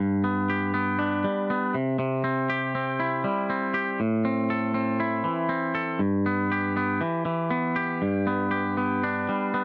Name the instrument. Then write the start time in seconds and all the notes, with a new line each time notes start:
clean electric guitar
0.00 G2
0.24 B3
0.50 G4
0.74 B3
0.99 D4
1.24 G3
1.50 B3
1.75 C3
1.99 C3
2.24 C4
2.50 G4
2.75 C4
3.00 E4
3.24 G3
3.50 C4
3.74 G4
4.00 A2
4.25 C4
4.50 A4
4.74 C4
5.00 E4
5.24 E3
5.49 C4
5.75 A4
5.99 G2
6.26 B3
6.52 G4
6.77 B3
7.01 E3
7.25 E3
7.50 B3
7.76 G4
8.02 G2
8.27 B3
8.51 G4
8.77 B3
9.03 D4
9.29 G3
9.54 B3